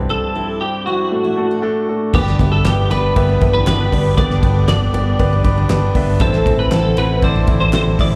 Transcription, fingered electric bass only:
2.14 2.35 G1 loud
2.39 2.60 G1 loud
2.65 2.86 G1 loud
2.90 3.11 G1 medium
3.16 3.37 G1 loud
3.42 3.62 G1 loud
3.66 3.87 G1 medium
3.93 4.13 G1 loud
4.18 4.38 G1 loud
4.43 4.64 G1 loud
4.68 4.89 G1 loud
4.93 5.14 G1 medium
5.20 5.40 G1 loud
5.45 5.66 G1 loud
5.69 5.90 G1 loud
5.95 6.16 G1 loud
6.20 6.41 A1 loud
6.46 6.67 A1 loud
6.72 6.93 A1 loud
6.98 7.18 A1 loud
7.23 7.43 A1 loud
7.48 7.69 A1 loud
7.73 7.94 A1 loud
7.99 8.15 A1 loud

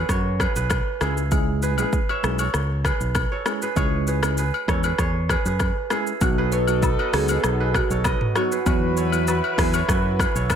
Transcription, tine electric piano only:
1.01 1.22 G#3 medium
1.01 1.22 C#4 medium
1.01 1.22 E4 medium
1.01 1.22 G#4 medium
1.31 1.74 G#3 medium
1.31 1.74 C#4 medium
1.31 1.74 E4 medium
1.31 1.75 G#4 loud
1.78 1.98 G#3 medium
1.78 1.98 C#4 medium
1.78 1.98 E4 medium
1.78 1.98 G#4 medium
2.23 2.44 G#3 medium
2.23 2.44 C#4 medium
2.23 2.44 E4 medium
2.23 2.44 G#4 medium
3.45 3.66 G#3 medium
3.45 3.66 C#4 medium
3.45 3.67 E4 medium
3.45 3.67 G#4 medium
3.76 4.19 G#3 loud
3.76 4.19 C#4 medium
3.76 4.19 E4 medium
3.76 4.19 G#4 loud
4.22 4.43 G#3 medium
4.22 4.43 C#4 medium
4.22 4.43 E4 medium
4.22 4.43 G#4 medium
4.68 4.89 G#3 medium
4.68 4.89 C#4 medium
4.68 4.89 E4 medium
4.68 4.89 G#4 medium
5.91 6.11 G#3 medium
5.91 6.11 C#4 medium
5.91 6.12 E4 medium
5.91 6.12 G#4 medium
6.21 6.64 F#3 medium
6.21 6.64 B3 medium
6.21 6.64 D#4 medium
6.21 6.64 F#4 loud
6.68 6.88 F#3 medium
6.68 6.88 B3 medium
6.68 6.88 D#4 medium
6.68 6.88 F#4 medium
7.13 7.34 F#3 medium
7.13 7.34 B3 medium
7.13 7.34 D#4 medium
7.13 7.34 F#4 medium
8.35 8.56 F#3 medium
8.35 8.56 B3 medium
8.35 8.56 D#4 medium
8.35 8.56 F#4 medium
8.66 9.09 F#3 loud
8.66 9.09 B3 medium
8.66 9.09 E4 medium
8.66 9.09 F#4 loud
9.12 9.33 F#3 medium
9.12 9.33 B3 medium
9.12 9.33 E4 medium
9.12 9.33 F#4 medium
9.58 9.79 F#3 medium
9.58 9.79 B3 medium
9.58 9.79 E4 medium
9.58 9.79 F#4 medium

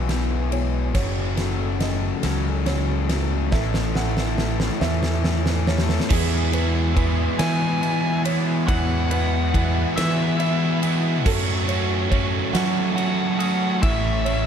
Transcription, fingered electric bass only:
0.00 0.95 B1 medium
0.95 2.11 F#1 medium
2.24 3.52 C#2 loud
3.52 4.68 A1 medium
4.81 5.97 E2 loud
6.11 7.26 E2 loud
7.40 8.70 E3 loud
8.68 9.84 E2 loud
9.97 11.26 E3 loud
11.26 12.41 F#2 loud
12.54 13.85 F#3 loud
13.83 14.46 A1 loud

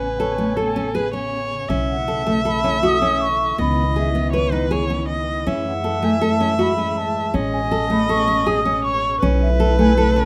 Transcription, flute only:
0.00 0.20 G#5 medium
0.19 0.76 C#5 medium
1.90 2.28 F#5 medium
2.26 2.47 A5 medium
2.46 2.83 B5 medium
2.84 3.22 D#6 loud
3.21 3.58 C#6 medium
3.59 3.94 B5 medium
3.98 4.49 E5 medium
5.67 6.06 F#5 medium
6.04 6.24 G#5 medium
6.23 6.62 A5 medium
6.61 6.99 B5 medium
6.97 7.35 A5 medium
7.53 7.93 G#5 medium
7.91 8.11 B5 medium
8.09 8.48 C#6 loud
8.47 8.85 D#6 loud
8.84 9.22 C#6 medium
9.41 9.76 E5 medium
9.79 9.96 G#5 medium
9.97 10.25 A5 medium

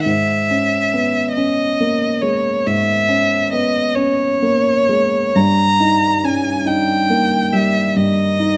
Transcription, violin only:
0.05 1.32 E5 soft
1.33 2.23 D#5 soft
2.22 2.68 C#5 soft
2.67 3.52 E5 medium
3.53 3.97 D#5 soft
3.95 5.37 C#5 medium
5.36 6.26 A#5 medium
6.24 6.68 G#5 soft
6.67 7.55 G5 soft
7.53 7.98 E5 soft
7.97 8.57 D#5 soft

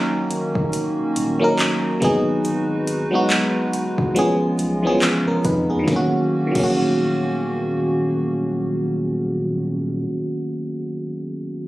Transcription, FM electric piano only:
0.00 1.40 F#3 medium
0.00 1.41 A#3 medium
0.00 1.42 C#4 medium
0.00 1.43 D#4 medium
0.00 1.44 A#4 loud
1.40 1.99 F#3 medium
1.40 2.02 A#3 medium
1.40 2.02 C#4 medium
1.40 2.02 D#4 medium
1.44 2.03 A#4 loud
2.00 2.87 F#3 medium
2.00 2.87 G#3 medium
2.00 2.88 B3 medium
2.00 2.88 D#4 medium
2.05 2.89 G#4 loud
3.11 4.15 F#3 medium
3.11 4.14 G#3 medium
3.11 4.15 B3 medium
3.11 4.17 D#4 medium
3.15 4.18 F#4 loud
4.15 4.68 F3 medium
4.15 4.69 G#3 medium
4.15 4.69 B3 medium
4.15 4.70 C#4 medium
4.19 4.70 G#4 loud
4.83 4.89 E3 medium
4.83 5.57 G#3 medium
4.83 5.02 B3 medium
4.83 5.03 C#4 medium
4.87 5.60 F3 medium
4.87 5.01 G#4 loud
5.02 5.26 B3 medium
5.02 5.26 G#4 medium
5.27 5.44 C#4 medium
5.27 5.44 A#4 medium
5.45 5.69 D#4 medium
5.45 5.69 B4 medium
5.70 6.11 B3 medium
5.70 6.10 G#4 medium
5.79 6.10 D#3 medium
5.84 6.12 F#3 medium
5.88 6.14 A#3 medium
5.92 6.16 C#4 medium
5.96 6.19 F#4 loud
6.47 10.44 D#3 medium
6.51 10.48 F#3 medium
6.55 10.52 A#3 medium
6.60 10.57 C#4 medium
6.60 10.60 F#4 loud

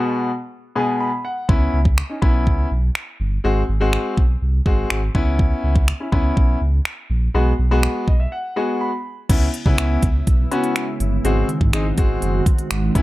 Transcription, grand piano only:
0.00 0.29 B2 medium
0.00 0.29 G#3 medium
0.00 0.29 B3 medium
0.00 0.29 F#4 medium
0.76 1.09 B2 medium
0.76 1.09 G#3 medium
0.76 1.09 B3 medium
0.76 1.09 G#4 medium
1.00 1.23 B5 medium
1.25 1.47 F#5 medium
1.49 1.77 B3 medium
1.49 1.77 C#4 medium
1.49 1.77 E4 medium
2.10 2.15 C#4 medium
2.10 2.16 D#4 medium
2.22 2.66 B3 medium
2.22 2.67 C#4 medium
2.22 2.67 E4 medium
3.44 3.61 G#3 medium
3.44 3.61 C4 medium
3.44 3.61 F#4 medium
3.80 4.19 G#3 medium
3.80 4.20 C4 medium
3.80 4.20 F#4 medium
4.66 4.99 G#3 medium
4.66 4.99 C4 medium
4.66 5.00 F#4 loud
5.15 5.83 B3 medium
5.15 5.83 C#4 medium
5.15 5.83 E4 loud
6.00 6.06 C#4 soft
6.00 6.06 E4 medium
6.12 6.57 B3 medium
6.12 6.57 C#4 medium
6.12 6.57 E4 medium
7.34 7.51 G#3 medium
7.34 7.51 B3 medium
7.34 7.51 F#4 medium
7.71 8.10 G#3 medium
7.71 8.10 B3 medium
7.71 8.10 F#4 medium
8.08 8.19 D#5 medium
8.20 8.31 E5 medium
8.32 8.55 F#5 medium
8.56 8.90 G#3 medium
8.56 8.90 B3 medium
8.56 8.90 F#4 medium
8.56 8.79 G#5 medium
8.81 9.26 B5 medium
9.29 9.46 B3 medium
9.29 9.46 C#4 medium
9.29 9.46 E4 medium
9.66 10.05 B3 medium
9.66 10.05 C#4 medium
9.66 10.05 E4 medium
10.51 10.85 B3 medium
10.51 10.85 C#4 medium
10.51 10.85 F#4 medium
11.24 11.47 G#3 medium
11.24 11.47 C4 medium
11.24 11.47 F#4 medium
11.73 11.84 G#3 medium
11.73 11.85 C4 medium
11.73 11.85 D#4 medium
11.98 12.42 G#3 medium
11.98 12.42 C4 medium
11.98 12.42 F#4 medium
12.95 13.02 B3 medium
12.95 13.02 C#4 medium
12.95 13.02 E4 loud

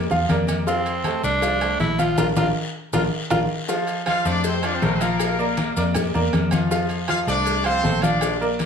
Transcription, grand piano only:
0.11 0.26 F3 medium
0.11 0.26 F4 medium
0.11 0.26 F5 medium
0.29 0.60 A#3 medium
0.29 0.61 A#4 medium
0.29 0.61 D5 medium
0.67 0.98 F3 medium
0.67 0.98 F4 medium
0.67 0.98 F5 medium
1.05 1.36 A3 medium
1.05 1.36 A4 medium
1.05 1.36 C5 medium
1.42 1.58 F3 medium
1.42 1.58 F4 medium
1.42 1.58 F5 medium
1.61 1.92 A3 medium
1.61 1.92 A4 medium
1.61 1.92 C5 medium
1.99 2.14 F3 medium
1.99 2.14 F4 medium
1.99 2.15 F5 medium
2.18 2.30 D4 medium
2.18 2.30 F4 medium
2.18 2.30 A#4 loud
2.36 2.49 D4 loud
2.36 2.49 F4 loud
2.36 2.49 A#4 loud
2.93 3.06 D4 medium
2.93 3.06 F4 medium
2.93 3.06 A#4 medium
3.30 3.43 D4 loud
3.30 3.43 F4 loud
3.30 3.43 A#4 loud
3.69 4.00 F3 loud
3.69 4.00 F4 medium
3.69 4.00 F5 medium
4.06 4.22 F3 medium
4.06 4.22 F4 medium
4.06 4.22 F5 medium
4.25 4.56 A3 medium
4.25 4.56 A4 medium
4.25 4.57 C5 medium
4.63 4.79 F3 medium
4.63 4.79 F4 loud
4.63 4.79 F5 medium
4.82 4.98 A3 medium
4.82 4.98 A4 medium
4.82 4.98 C5 medium
5.01 5.32 F3 medium
5.01 5.32 F4 medium
5.01 5.32 F5 medium
5.39 5.70 A#3 medium
5.39 5.70 A#4 medium
5.39 5.70 D5 medium
5.77 6.08 A#3 medium
5.77 6.08 A#4 medium
5.77 6.08 D5 medium
6.14 6.45 A#3 medium
6.14 6.46 A#4 medium
6.14 6.46 D5 medium
6.51 6.67 F3 medium
6.51 6.68 F4 medium
6.51 6.68 F5 medium
6.71 7.02 F3 medium
6.71 7.02 F4 medium
6.71 7.02 F5 medium
7.08 7.24 F3 medium
7.08 7.24 F4 medium
7.08 7.24 F5 medium
7.27 7.58 A3 medium
7.27 7.59 A4 medium
7.27 7.59 C5 medium
7.65 7.81 F3 medium
7.65 7.81 F4 medium
7.65 7.81 F5 medium
7.84 7.99 A3 medium
7.84 8.00 A4 medium
7.84 8.00 C5 medium
8.03 8.34 F3 medium
8.03 8.34 F4 medium
8.03 8.34 F5 medium
8.41 8.66 A#3 medium
8.41 8.66 A#4 medium
8.41 8.66 D5 medium

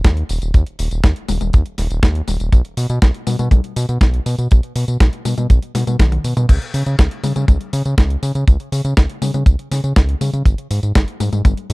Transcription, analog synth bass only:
0.04 0.23 D#2 medium
0.29 0.39 D#1 loud
0.42 0.51 D#1 medium
0.54 0.64 D#2 loud
0.79 0.88 D#1 medium
0.91 1.01 D#1 medium
1.04 1.13 D#2 medium
1.29 1.38 D#1 medium
1.41 1.50 D#1 medium
1.54 1.63 D#2 medium
1.78 1.87 D#1 loud
1.90 2.00 D#1 medium
2.03 2.22 D#2 medium
2.28 2.37 D#1 loud
2.40 2.49 D#1 medium
2.52 2.62 B1 loud
2.77 2.87 B2 medium
2.90 2.99 B2 medium
3.02 3.11 B1 medium
3.27 3.36 B2 medium
3.39 3.49 B2 medium
3.51 3.61 B1 medium
3.76 3.86 B2 loud
3.89 3.98 B2 medium
4.01 4.20 B1 medium
4.26 4.35 B2 loud
4.38 4.48 B2 medium
4.52 4.61 B1 loud
4.75 4.85 B2 medium
4.88 4.97 B2 medium
5.00 5.10 B1 medium
5.25 5.35 B2 medium
5.38 5.47 B2 medium
5.50 5.59 B1 loud
5.75 5.84 B2 loud
5.87 5.97 B2 medium
5.99 6.18 B1 loud
6.24 6.34 B2 medium
6.37 6.46 B2 medium
6.49 6.58 C#2 loud
6.74 6.83 C#3 medium
6.86 6.96 C#3 medium
6.99 7.08 C#2 medium
7.24 7.33 C#3 medium
7.36 7.45 C#3 medium
7.48 7.58 C#2 medium
7.73 7.82 C#3 loud
7.86 7.95 C#3 medium
7.98 8.17 C#2 medium
8.23 8.32 C#3 loud
8.35 8.44 C#3 medium
8.48 8.57 C#2 loud
8.72 8.82 C#3 medium
8.85 8.94 C#3 medium
8.98 9.07 C#2 medium
9.22 9.31 C#3 medium
9.34 9.44 C#3 medium
9.46 9.56 C#2 medium
9.71 9.81 C#3 loud
9.84 9.93 C#3 medium
9.96 10.15 C#2 medium
10.21 10.30 C#3 loud
10.33 10.43 C#3 medium
10.46 10.55 G#1 loud
10.71 10.80 G#2 medium
10.83 10.92 G#2 medium
10.96 11.05 G#1 medium
11.20 11.30 G#2 medium
11.33 11.42 G#2 medium
11.45 11.54 G#1 medium
11.70 11.73 G#2 loud

